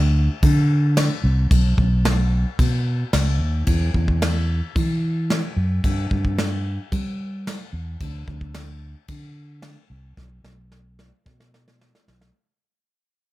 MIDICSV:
0, 0, Header, 1, 3, 480
1, 0, Start_track
1, 0, Tempo, 541516
1, 1339, Time_signature, 4, 2, 24, 8
1, 11810, End_track
2, 0, Start_track
2, 0, Title_t, "Fingered electric bass"
2, 0, Program_c, 0, 33
2, 0, Note_on_c, 0, 38, 92
2, 242, Note_off_c, 0, 38, 0
2, 379, Note_on_c, 0, 50, 98
2, 961, Note_off_c, 0, 50, 0
2, 1096, Note_on_c, 0, 36, 91
2, 1292, Note_off_c, 0, 36, 0
2, 1338, Note_on_c, 0, 35, 98
2, 1532, Note_off_c, 0, 35, 0
2, 1572, Note_on_c, 0, 35, 87
2, 2157, Note_off_c, 0, 35, 0
2, 2295, Note_on_c, 0, 47, 89
2, 2685, Note_off_c, 0, 47, 0
2, 2775, Note_on_c, 0, 37, 77
2, 2993, Note_off_c, 0, 37, 0
2, 3005, Note_on_c, 0, 39, 79
2, 3227, Note_off_c, 0, 39, 0
2, 3252, Note_on_c, 0, 40, 94
2, 3449, Note_off_c, 0, 40, 0
2, 3495, Note_on_c, 0, 40, 86
2, 4079, Note_off_c, 0, 40, 0
2, 4216, Note_on_c, 0, 52, 91
2, 4799, Note_off_c, 0, 52, 0
2, 4933, Note_on_c, 0, 42, 89
2, 5129, Note_off_c, 0, 42, 0
2, 5175, Note_on_c, 0, 43, 93
2, 5371, Note_off_c, 0, 43, 0
2, 5417, Note_on_c, 0, 43, 89
2, 6000, Note_off_c, 0, 43, 0
2, 6133, Note_on_c, 0, 55, 95
2, 6718, Note_off_c, 0, 55, 0
2, 6850, Note_on_c, 0, 40, 90
2, 7048, Note_off_c, 0, 40, 0
2, 7095, Note_on_c, 0, 38, 97
2, 7291, Note_off_c, 0, 38, 0
2, 7335, Note_on_c, 0, 38, 89
2, 7919, Note_off_c, 0, 38, 0
2, 8054, Note_on_c, 0, 50, 97
2, 8639, Note_off_c, 0, 50, 0
2, 8775, Note_on_c, 0, 36, 90
2, 8971, Note_off_c, 0, 36, 0
2, 9017, Note_on_c, 0, 35, 100
2, 9213, Note_off_c, 0, 35, 0
2, 9251, Note_on_c, 0, 35, 91
2, 9838, Note_off_c, 0, 35, 0
2, 9978, Note_on_c, 0, 47, 97
2, 10563, Note_off_c, 0, 47, 0
2, 10706, Note_on_c, 0, 35, 87
2, 10899, Note_off_c, 0, 35, 0
2, 11810, End_track
3, 0, Start_track
3, 0, Title_t, "Drums"
3, 377, Note_on_c, 9, 49, 60
3, 380, Note_on_c, 9, 36, 111
3, 466, Note_off_c, 9, 49, 0
3, 469, Note_off_c, 9, 36, 0
3, 857, Note_on_c, 9, 49, 59
3, 859, Note_on_c, 9, 38, 114
3, 945, Note_off_c, 9, 49, 0
3, 948, Note_off_c, 9, 38, 0
3, 1338, Note_on_c, 9, 36, 111
3, 1338, Note_on_c, 9, 49, 55
3, 1426, Note_off_c, 9, 49, 0
3, 1427, Note_off_c, 9, 36, 0
3, 1578, Note_on_c, 9, 36, 77
3, 1666, Note_off_c, 9, 36, 0
3, 1817, Note_on_c, 9, 49, 61
3, 1819, Note_on_c, 9, 38, 103
3, 1905, Note_off_c, 9, 49, 0
3, 1908, Note_off_c, 9, 38, 0
3, 2295, Note_on_c, 9, 49, 64
3, 2296, Note_on_c, 9, 36, 105
3, 2384, Note_off_c, 9, 36, 0
3, 2384, Note_off_c, 9, 49, 0
3, 2773, Note_on_c, 9, 49, 67
3, 2776, Note_on_c, 9, 38, 111
3, 2862, Note_off_c, 9, 49, 0
3, 2865, Note_off_c, 9, 38, 0
3, 3250, Note_on_c, 9, 49, 63
3, 3255, Note_on_c, 9, 36, 102
3, 3338, Note_off_c, 9, 49, 0
3, 3344, Note_off_c, 9, 36, 0
3, 3496, Note_on_c, 9, 36, 79
3, 3585, Note_off_c, 9, 36, 0
3, 3617, Note_on_c, 9, 36, 76
3, 3706, Note_off_c, 9, 36, 0
3, 3738, Note_on_c, 9, 49, 61
3, 3741, Note_on_c, 9, 38, 109
3, 3827, Note_off_c, 9, 49, 0
3, 3830, Note_off_c, 9, 38, 0
3, 4218, Note_on_c, 9, 36, 116
3, 4222, Note_on_c, 9, 49, 60
3, 4307, Note_off_c, 9, 36, 0
3, 4310, Note_off_c, 9, 49, 0
3, 4698, Note_on_c, 9, 49, 61
3, 4701, Note_on_c, 9, 38, 111
3, 4787, Note_off_c, 9, 49, 0
3, 4789, Note_off_c, 9, 38, 0
3, 5175, Note_on_c, 9, 49, 57
3, 5176, Note_on_c, 9, 36, 101
3, 5264, Note_off_c, 9, 49, 0
3, 5265, Note_off_c, 9, 36, 0
3, 5417, Note_on_c, 9, 36, 81
3, 5505, Note_off_c, 9, 36, 0
3, 5537, Note_on_c, 9, 36, 74
3, 5625, Note_off_c, 9, 36, 0
3, 5657, Note_on_c, 9, 49, 57
3, 5659, Note_on_c, 9, 38, 111
3, 5745, Note_off_c, 9, 49, 0
3, 5748, Note_off_c, 9, 38, 0
3, 6135, Note_on_c, 9, 36, 114
3, 6135, Note_on_c, 9, 49, 64
3, 6223, Note_off_c, 9, 49, 0
3, 6224, Note_off_c, 9, 36, 0
3, 6621, Note_on_c, 9, 49, 63
3, 6624, Note_on_c, 9, 38, 117
3, 6710, Note_off_c, 9, 49, 0
3, 6712, Note_off_c, 9, 38, 0
3, 7094, Note_on_c, 9, 49, 63
3, 7096, Note_on_c, 9, 36, 101
3, 7183, Note_off_c, 9, 49, 0
3, 7185, Note_off_c, 9, 36, 0
3, 7336, Note_on_c, 9, 36, 85
3, 7425, Note_off_c, 9, 36, 0
3, 7456, Note_on_c, 9, 36, 77
3, 7545, Note_off_c, 9, 36, 0
3, 7572, Note_on_c, 9, 49, 62
3, 7574, Note_on_c, 9, 38, 107
3, 7660, Note_off_c, 9, 49, 0
3, 7663, Note_off_c, 9, 38, 0
3, 8049, Note_on_c, 9, 49, 67
3, 8055, Note_on_c, 9, 36, 108
3, 8137, Note_off_c, 9, 49, 0
3, 8143, Note_off_c, 9, 36, 0
3, 8528, Note_on_c, 9, 49, 61
3, 8531, Note_on_c, 9, 38, 115
3, 8617, Note_off_c, 9, 49, 0
3, 8619, Note_off_c, 9, 38, 0
3, 9018, Note_on_c, 9, 36, 105
3, 9019, Note_on_c, 9, 38, 59
3, 9107, Note_off_c, 9, 36, 0
3, 9107, Note_off_c, 9, 38, 0
3, 9257, Note_on_c, 9, 38, 73
3, 9346, Note_off_c, 9, 38, 0
3, 9499, Note_on_c, 9, 38, 73
3, 9588, Note_off_c, 9, 38, 0
3, 9740, Note_on_c, 9, 38, 83
3, 9829, Note_off_c, 9, 38, 0
3, 9982, Note_on_c, 9, 38, 82
3, 9983, Note_on_c, 9, 36, 109
3, 10071, Note_off_c, 9, 36, 0
3, 10071, Note_off_c, 9, 38, 0
3, 10107, Note_on_c, 9, 38, 78
3, 10196, Note_off_c, 9, 38, 0
3, 10229, Note_on_c, 9, 38, 92
3, 10317, Note_off_c, 9, 38, 0
3, 10351, Note_on_c, 9, 38, 85
3, 10439, Note_off_c, 9, 38, 0
3, 10471, Note_on_c, 9, 38, 101
3, 10560, Note_off_c, 9, 38, 0
3, 10592, Note_on_c, 9, 38, 93
3, 10681, Note_off_c, 9, 38, 0
3, 10710, Note_on_c, 9, 38, 109
3, 10799, Note_off_c, 9, 38, 0
3, 10827, Note_on_c, 9, 38, 89
3, 10915, Note_off_c, 9, 38, 0
3, 11810, End_track
0, 0, End_of_file